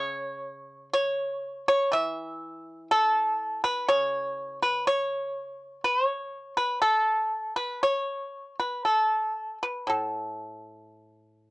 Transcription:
pipa
Already playing: C#3 C#5
0.93 C#5
1.68 C#5
1.92 E3 E5
2.91 A4
3.64 B4
3.88 C#3 C#5
4.63 B4
4.87 C#5
5.84 B4
6.05 C#5
6.57 B4
6.82 A4
7.56 B4
7.83 C#5
8.60 B4
8.85 A4
9.63 B4
9.87 A2 A4

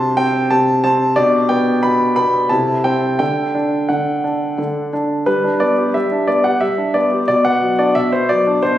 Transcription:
grand piano
Already playing: C3 C4 D4 F#4 A5 C6
0.17 C4 G5
0.51 C3 A5
0.84 C4 A5
1.16 B2 D4 G4 D5
1.49 B3 G5
1.83 B2 B5
2.16 B3 B5
2.49 C3 E4 A4 A5
2.84 C4 G5
3.19 D3 D4 A4 G5
3.55 D4
3.89 D3 F#5
4.24 D4
4.58 D3
4.93 D4
5.26 G3 B4
5.44 D4
5.60 B3 D5
5.78 G4
5.94 G3 E5
6.12 D4
6.27 B3 D5
6.44 G4 F#5
6.61 G3 E5
6.78 D4
6.94 B3 D5
7.12 G4
7.28 B2 D5
7.45 B3 F#5
7.62 F#3
7.79 D4 D5
7.95 B2 E5
8.12 B3 C5
8.29 F#3 D5
8.47 D4
8.63 B2 C5

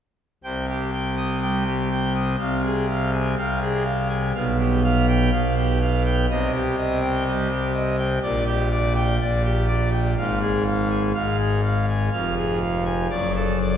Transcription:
pipe organ
0.44 C2 C3 G5
0.68 G4
0.93 G5
1.17 D#6
1.42 G3 G5
1.67 G4
1.91 G5
2.15 D#6
2.39 C2 C3 F5
2.64 G#4
2.89 F5
3.13 G#5
3.37 C2 C3 F5
3.61 G#4
3.86 F5
4.10 G#5
4.35 B1 B2 F5
4.59 G4
4.84 F5
5.08 G5
5.32 B1 B2 F5
5.57 G4
5.81 F5
6.05 G5
6.30 C2 C3 D#5
6.54 G4
6.78 D#5
7.02 G5
7.27 G3 D#5
7.50 G4
7.74 D#5
7.98 G5
8.23 A#1 A#2 D5
8.46 G4
8.71 D5
8.96 G5
9.20 A#1 A#2 D5
9.44 G4
9.68 D5
9.92 G5
10.17 G#1 G#2 F5
10.42 G#4
10.66 F5
10.90 G#5
11.14 G#1 G#2 F5
11.39 G#4
11.64 F5
11.88 G#5
12.12 F1 F2 F5
12.37 G#4
12.62 F5
12.86 G#5
13.10 F#1 F#2 D5
13.35 A4
13.61 D5

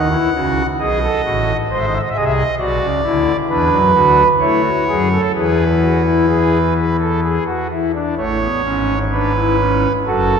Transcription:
pipe organ
Already playing: D#2 D#3 F#5
0.10 E4
0.35 C#2 C#3 F#4
0.79 B1 B2 G#4 D#5
1.03 A4
1.25 A1 A2 F#4
1.71 G#1 G#2 C5 D#5
1.79 E5
1.87 D#5
1.94 E5
2.02 D#5
2.10 E5
2.16 C2 C3 G#4 D#5
2.25 E5
2.31 D#5
2.59 B1 B2 F#4 D5
2.81 C#2 C#3
3.03 D2 D3 E4
3.49 E2 E3 D4 B4
3.72 F#2 F#3
3.94 D2 D3 F#4
4.40 A3 E4 C#5
4.64 F#4
4.88 F#2 F#3 G#4
5.12 A4
5.35 E2 E3 G#4 B4
5.81 F#4
6.05 E4
6.29 G#4
6.76 B4
7.00 A4
7.23 G#4
7.47 F#4
7.71 E4
7.94 D4
8.17 A1 A2 A3 C#5
8.41 B3
8.64 G#1 G#2 C#4
9.12 D4 B4
9.36 E4
9.59 C#4
10.06 F#1 F#2 F#4 A4

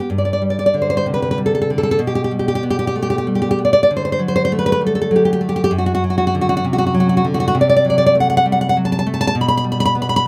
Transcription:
nylon-string guitar
0.10 G2
0.18 D5
0.25 D5
0.33 D5
0.42 G3
0.50 D5
0.59 D5
0.66 D5
0.74 D3
0.82 C5
0.90 C5
0.97 C5
1.06 C3
1.14 B4
1.22 B4
1.31 B4
1.38 G3
1.46 A4
1.55 A4
1.62 A4
1.70 D3
1.78 A4
1.83 A4
1.91 A4
1.99 B2
2.07 G4
2.15 G4
2.24 G4
2.31 G3
2.39 G4
2.48 G4
2.55 G4
2.63 B3
2.70 G4
2.79 G4
2.87 G4
2.96 A3
3.02 G4
3.10 G4
3.18 G4
3.27 G3
3.35 G4
3.42 G4
3.51 G4
3.59 B3
3.65 D5
3.73 D5
3.83 D5
3.91 D3
3.97 C5
4.05 C5
4.12 C5
4.19 F#3
4.28 C5
4.36 C5
4.45 C5
4.52 A3
4.59 B4
4.66 B4
4.72 B4
4.81 G3
4.87 A4
4.95 A4
5.02 A4
5.11 F#3
5.16 G4
5.25 G4
5.33 G4
5.41 A3
5.49 G4
5.56 G4
5.64 G4
5.71 F#2
5.78 F#4
5.86 F#4
5.95 F#4
6.04 F#3
6.10 F#4
6.18 F#4
6.27 F#4
6.35 D3
6.41 F#4
6.49 F#4
6.57 F#4
6.65 C3
6.73 F#4
6.78 F#4
6.87 F#4
6.94 F#3
7.00 F#4
7.09 F#4
7.17 F#4
7.25 D3
7.34 F#4
7.40 F#4
7.48 F#4
7.55 C3
7.61 D5
7.69 D5
7.76 D5
7.85 F#3
7.90 D5
7.98 D5
8.06 D5
8.15 A3
8.20 F#5
8.30 F#5
8.37 F#5
8.46 G3
8.52 F#5
8.61 F#5
8.69 F#5
8.77 F#3
8.85 A5
8.92 A5
8.99 A5
9.07 A3
9.14 A5
9.21 A5
9.27 A5
9.35 B2
9.41 B5
9.48 B5
9.57 B5
9.64 G3
9.72 B5
9.80 B5
9.85 B5
9.95 B3
10.02 B5
10.09 B5
10.16 B5

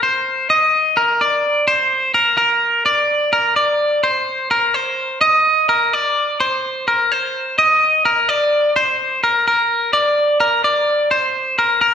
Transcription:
clean electric guitar
0.03 C5
0.50 D#5
0.97 A#4
1.21 D5
1.68 C5
2.14 A#4
2.37 A#4
2.86 D5
3.33 A#4
3.56 D5
4.04 C5
4.51 A#4
4.74 C5
5.21 D#5
5.69 A#4
5.93 D5
6.40 C5
6.88 A#4
7.12 C5
7.59 D#5
8.05 A#4
8.29 D5
8.76 C5
9.24 A#4
9.48 A#4
9.93 D5
10.40 A#4
10.64 D5
11.11 C5
11.59 A#4
11.81 A#4

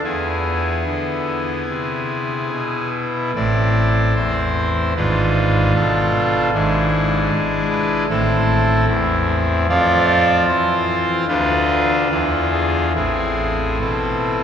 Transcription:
pipe organ
0.04 E2 E3 B3 E4 G#4
0.86 D3
1.68 C3
2.51 B2
3.35 A1 A2 C4 E4 D5
4.16 E2 C5
4.96 G#1 G#2 D4 F4 B4
5.75 B2 A4
6.54 G#1 G#2 D4 E4 G#4
7.32 G#3
7.71 B4
8.10 A1 A2 C4 E4 A4
8.87 E2 E4
9.69 F2 F3 C4 F4 D5
10.48 E3 C5
11.28 D2 D3 D4 F4 B4
12.11 E2 E3 D4 F4
12.52 G#4
12.95 A1 A2 C4 E4 G#4
13.80 B2 A4

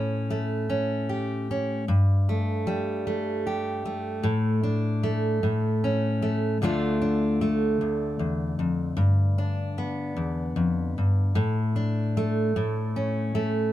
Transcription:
steel-string acoustic guitar
Already playing: A2 C#4
0.30 A3
0.70 C#4
1.09 G4
1.51 C#4
1.88 G2
2.29 A3
2.67 G3
3.07 A3
3.47 G4
3.85 A3
4.23 A2
4.63 D4
5.03 A3
5.43 A2
5.84 C#4
6.22 A3
6.62 D2 D3 A3 D4 F4
7.02 D4
7.41 A3
7.81 D2
8.19 E2
8.59 F2
8.97 G2
9.38 D4
9.78 B3
10.16 E2
10.56 F2
10.98 G2
11.35 A2
11.76 D4
12.17 A3
12.56 A2
12.96 C#4
13.35 A3

